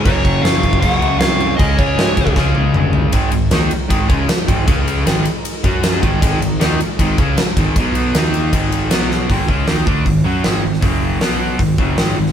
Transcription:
Already playing: C#4
0.04 F#1 F#2 C#3 F#3 C#4 G#4 A#4 C#5, kick, crash
0.08 F#3
0.25 F#1, kick, crash
0.42 F#1 C#5 F5, snare, crash
0.63 F#1, kick, crash
0.73 kick
0.80 F#1 F#2 C#3 C#5 F5, kick, crash
0.84 F#3
0.91 F#5
1.01 C#2, crash
1.19 C2 C#5 F5, snare, crash
1.40 crash
1.56 C#2 C#3 G#3 C#4 G#4 D#5, kick, crash
1.62 C#4
1.76 C#2 G#4 C#5, kick, crash
1.98 G#2, snare, crash
2.17 C#2, kick, crash
2.27 kick
2.35 C#2 C#3 G#3 C#4, kick, snare
2.55 C#2, high tom
2.74 G1, mid tom
2.93 floor tom
3.12 G#1 G#2 D#3 G#3 D#4 A#4, kick, ride
3.31 G#1 G#2 D#3, ride
3.51 D#2 D#3 A#3 D#4, snare, ride
3.71 muted distorted electric guitar stroke, muted picked electric bass stroke, ride
3.89 G#1 G#2 D#3 G#3, kick, ride
4.08 C#2 C#3 G#3 C#4, kick, ride
4.28 muted distorted electric guitar stroke, muted picked electric bass stroke, snare, ride
4.47 G#1 G#2 D#3 G#3, kick, ride
4.66 C#2 C#3 G#3 C#4 G#4 D#5, kick, ride
4.88 ride
5.04 G#1 G#2 D#3 G#3 D#4 A#4, snare, ride
5.25 ride
5.45 ride
5.63 F#2 F#3 C#4 F#4 G#4, kick, ride
5.83 snare, ride
6.01 G#1 G#2 D#3 G#3 D#4 A#4, kick, ride
6.20 G#1 G#2 D#3 G#3, kick, ride
6.41 G#1 G#2 D#3, ride
6.60 D#2 D#3 A#3 D#4, snare, ride
6.80 muted picked electric bass stroke, muted distorted electric guitar stroke, ride
6.99 G#1 G#2 D#3 G#3, kick, ride
7.18 C#2 C#3 G#3 C#4, kick, ride
7.38 muted picked electric bass stroke, muted distorted electric guitar stroke, snare, ride
7.57 G#1 G#2 D#3 G#3, kick, ride
7.75 B1 B2 F#3 B3 F#4 C#5, kick, ride
7.95 ride
8.15 D#2 D#3 A#3 D#4 A#4 F5, snare, ride
8.34 ride
8.53 G#1 G#2 D#3 G#3, kick, ride
8.72 ride
8.91 B1 B2 F#3 B3 F#4 C#5, snare, ride
9.11 snare
9.30 G#1 G#2 D#3 G#3, kick, open hi-hat
9.48 C#2 C#3 G#3 C#4, kick
9.67 D#2 D#3 A#3 D#4, snare, open hi-hat
9.86 D2 D3 A3 D4, kick
10.05 G#1 G#2 D#3, kick, open hi-hat
10.24 F#2 F#3 C#4 F#4
10.43 G#1 G#2 D#3 G#3, snare, open hi-hat
10.62 G#1 G#2 D#3
10.73 snare
10.81 F#1 F#2 C#3 F#3, kick, open hi-hat
11.20 B1 B2 F#3 B3, snare, open hi-hat
11.58 G#1 G#2 D#3, kick, open hi-hat
11.78 F#1 F#2 C#3 F#3, kick
11.98 G#1 G#2 D#3 G#3, snare, open hi-hat
12.17 G#1 G#2 D#3
12.26 snare

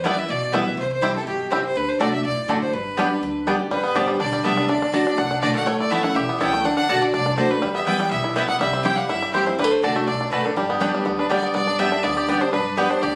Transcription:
Already playing: E2
0.03 E3 G3 B3 E4 B4 D5 G5
0.17 B3 E4 E5
0.29 B1 B2 D5
0.52 E3 G3 B3 E4 B4 E5 G5
0.66 B3 E4
0.77 C2 C3 C5
0.92 C5
1.01 E3 G3 C4 E4 C5 G5
1.14 C4 E4 A4
1.26 G1 B2 G4
1.51 C3 G3 C4 E4 G4 C5 G5
1.65 C5
1.75 D2 D3 B4
1.89 C5
2.00 C2 D3 A3 D4 F#4 D5 A5
2.12 D4 F#4 E5
2.24 B1 A2 D5
2.48 A1 D3 A3 D4 F#4 D5 A5
2.62 C5
2.72 G1 G2 B4
2.97 G3 B3 D4 G4 D5 G5
3.10 D4 G4
3.21 D2 D3
3.47 G3 B3 D4 G4 D5 G5
3.59 D4 G4
3.70 G1 G2 G3 B4
3.83 B3
3.95 A1 D3 G3 B3 G4 C5 D5 A5
4.08 G3
4.20 B1 D3 D4 D5
4.33 G3
4.44 C2 D3 G3 B3 G4 D5 E5 A5
4.57 D4
4.69 D2 D3 D4 D5
4.82 D4
4.92 D2 D3 A3 D4 F#4 D5 A5
5.05 D4 F#4
5.18 C2 A2 D4 F#5
5.31 D4
5.41 B1 D3 A3 D4 F#4 D5 A5
5.55 A3 F#5
5.67 A1 A2 A3 C#5
5.80 E4 D5
5.91 E3 A3 B3 C#4 E4 C#5 E5 A5
6.03 C#4 E4 F#5
6.15 B1 E2 G4 E5
6.29 B3
6.40 C#2 E3 B3 C#4 E4 C#5 G5 A5
6.53 A3
6.65 D2 D3 D4 F#5
6.77 D4 F#5
6.89 B1 D3 A3 D4 F#4 D5 A5
7.02 D4 D5
7.14 C2 A2 D4 D5
7.26 D4
7.37 D2 D3 A3 D4 F#4 C5 D5 A5
7.51 A3 D4 F#4 B4
7.62 E2 G3
7.74 B3 E5
7.86 E3 G3 B3 E4 B4 G5
8.00 G3
8.11 B1 A2 B3 E5
8.24 E4
8.35 B2 G3 B3 E4 B4 E5 G5
8.48 B3 F#5
8.60 C2 C3 G3 E5
8.73 C4
8.83 E3 G3 C4 E4 G4 C5 G5
8.95 G3 E4 F5 F#5
8.99 C4
9.08 G1 G2 E4 E5
9.22 G3
9.33 E3 G3 C4 E4 G4 C5 G5
9.46 C4 E4 C5
9.59 D2 D3 G3 B4
9.64 A3
9.71 C5
9.82 C2 D3 A3 D4 F#4 D5 A5
9.95 A3 D4 F#4 E5
10.07 B1 B2 D4 D5
10.21 D4
10.31 A1 A2 A3 F#4 B4 D5 A5
10.44 D4 A4
10.56 G1 G2 G3 G4
10.70 B3
10.80 G3 B3 D4 G4 D5 G5
10.95 G3
11.05 D2 D3 B3
11.18 D4 B4
11.29 G3 B3 D4 G4 D5 G5
11.43 B3
11.54 G1 G2 B3 D5
11.67 D4
11.79 G3 B3 D4 G4 D5 E5 G5
11.92 D4
12.03 D2 D3 B3 D5
12.17 G4
12.28 G3 B3 D4 G4 D5 G5
12.41 D4 G4 C5
12.52 G1 G2 D4 B4
12.77 G3 B3 D4 G4 B4 D5 G5
12.89 D4 C5
13.01 D2 D3 G4 D5

